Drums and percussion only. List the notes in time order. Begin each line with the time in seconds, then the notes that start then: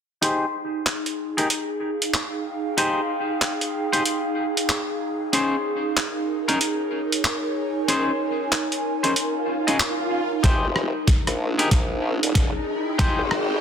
0.23 closed hi-hat
0.86 clap, closed hi-hat
1.06 closed hi-hat
1.38 closed hi-hat
1.50 closed hi-hat
2.02 closed hi-hat
2.14 clap, closed hi-hat
2.78 closed hi-hat
3.42 clap, closed hi-hat
3.61 closed hi-hat
3.93 closed hi-hat
4.05 closed hi-hat
4.57 closed hi-hat
4.69 clap, closed hi-hat
5.33 closed hi-hat
5.97 clap, closed hi-hat
6.49 closed hi-hat
6.61 closed hi-hat
7.12 closed hi-hat
7.25 clap, closed hi-hat
7.88 closed hi-hat
8.52 clap, closed hi-hat
8.72 closed hi-hat
9.04 closed hi-hat
9.16 closed hi-hat
9.68 closed hi-hat
9.80 clap, closed hi-hat
10.44 kick, snare, closed hi-hat
10.76 cross-stick
11.07 kick, snare, closed hi-hat
11.27 cross-stick, closed hi-hat
11.59 closed hi-hat
11.71 kick, snare, closed hi-hat
12.23 closed hi-hat
12.35 kick, snare, closed hi-hat
12.99 kick, snare, closed hi-hat
13.31 cross-stick